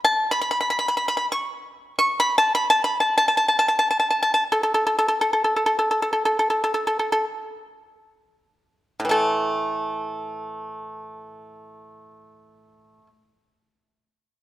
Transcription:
0.05 A5
0.31 B5
0.41 B5
0.51 B5
0.61 B5
0.70 B5
0.79 B5
0.88 B5
0.97 B5
1.08 B5
1.17 B5
1.32 C#6
1.99 C#6
2.20 B5
2.38 A5
2.55 B5
2.70 A5
2.84 B5
3.00 A5
3.18 A5
3.28 A5
3.37 A5
3.48 A5
3.59 A5
3.68 A5
3.79 A5
3.91 A5
4.00 A5
4.10 A5
4.23 A5
4.34 A5
4.52 A4
4.63 A4
4.74 A4
4.87 A4
4.99 A4
5.08 A4
5.21 A4
5.33 A4
5.44 A4
5.56 A4
5.66 A4
5.79 A4
5.91 A4
6.02 A4
6.13 A4
6.25 A4
6.39 A4
6.50 A4
6.64 A4
6.74 A4
6.87 A4
6.99 A4
7.12 A4
9.00 A2
9.05 E3
9.09 A3 A4

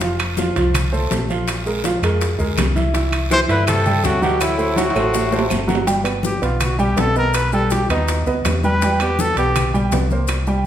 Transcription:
Already playing: F1
0.01 F3 F4 F5, high bongo, high conga, high timbale, long guiro, maracas
0.19 high conga, high timbale, claves, maracas
0.37 F3 F4 F5, high bongo, high conga, short guiro, maracas
0.56 C2 F3 F4 F5, high conga, high timbale, short guiro, maracas
0.74 high bongo, high conga, low conga, high timbale, long guiro, claves, maracas
0.92 A3 A4 C5, high conga, maracas
1.10 A#1, high bongo, low bongo, high conga, high timbale, low timbale, short guiro, maracas
1.29 F3 F4 F5, high conga, short guiro, maracas
1.48 high bongo, high conga, high timbale, long guiro, claves, maracas
1.66 G#3 G#4 A#4, high conga, maracas
1.84 F3 F4 F5, high bongo, high conga, high timbale, short guiro, maracas
2.02 F2 G#3 G#4 A#4, high bongo, high conga, high timbale, short guiro, claves, maracas
2.21 high bongo, high conga, high timbale, long guiro, maracas
2.39 D2 G#3 G#4 A#4, high bongo, high conga, maracas
2.57 C2, high bongo, low bongo, high conga, high timbale, low timbale, short guiro, claves, maracas
2.76 E3 E4 E5, high bongo, high conga, short guiro, maracas
2.94 E3 E4 E5, high bongo, high conga, high timbale, long guiro, maracas
3.12 high conga, high timbale, claves, maracas
3.30 E3 E4 C5 E5, high bongo, high conga, short guiro, maracas
3.48 G2 D3 E3 E4 B4 E5, high conga, high timbale, short guiro, maracas
3.67 C3 A4, high bongo, high conga, low conga, high timbale, long guiro, claves, maracas
3.86 G3 G4 A4, high conga, low conga, maracas
4.03 D2 A2 F#4, high bongo, low bongo, high conga, high timbale, short guiro, maracas
4.21 B2 F#3 F#4 G4 F#5, high conga, short guiro, maracas
4.40 A2 E4, high bongo, high conga, high timbale, long guiro, claves, maracas
4.58 A3 A4 C5, high conga, maracas
4.76 A2 F#3 F#4 F#5, high bongo, high conga, high timbale, short guiro, maracas
4.90 high timbale
4.95 A1 A3 A4 C5, high bongo, high conga, short guiro, claves, maracas
5.14 high bongo, high conga, low timbale, long guiro, maracas
5.32 A3 A4 C5, high bongo, high conga, maracas
5.39 low timbale
5.50 G1, low bongo, high conga, low timbale, short guiro, claves, maracas
5.67 F#3 F#4 F#5, low bongo, high conga, short guiro, maracas
5.75 low timbale
5.87 G3 G4 G5, high bongo, high conga, high timbale, maracas
6.04 B3 B4 D5, high conga, high timbale, claves, maracas
6.23 G4, high bongo, high conga, maracas
6.42 B1 B3 F4 B4 D5, high timbale, maracas
6.61 F#4, high bongo, high conga, low conga, high timbale, claves, maracas
6.79 G3 G4 G5, high conga, maracas
6.97 B1 B3 A4 B4 D5, high bongo, low bongo, high conga, high timbale, maracas
7.16 B3 A#4 B4 D#5, maracas
7.34 B4, high bongo, high conga, high timbale, claves, maracas
7.52 G3 G4 A4 G5, maracas
7.70 G4, high bongo, high conga, high timbale, maracas
7.89 D#2 B3 D#4 B4 D#5, high bongo, high conga, high timbale, claves, maracas
8.08 high bongo, high conga, high timbale, maracas
8.26 D2 B3 B4 D#5, high bongo, high conga, maracas
8.45 E2, high bongo, low bongo, high conga, high timbale, low timbale, claves, maracas
8.63 G3 G4 B4 G5, high bongo, high conga, maracas
8.82 G3 G4 G5, high bongo, high conga, high timbale, maracas
9.00 B3 G4 B4 D5, high conga, high timbale, claves, maracas
9.19 A4, high bongo, high conga, maracas
9.36 B1 B3 G4 B4 D5, high conga, high timbale, maracas
9.56 high bongo, high conga, low conga, high timbale, claves, maracas
9.74 G3 G4 G5, high conga, maracas
9.92 C2 B3 B4 D5, high bongo, low bongo, high conga, high timbale, low timbale, maracas
10.11 A#3 A#4 C5, high conga, maracas
10.28 high bongo, high conga, high timbale, claves, maracas
10.47 G3 G4 G5, high conga, maracas

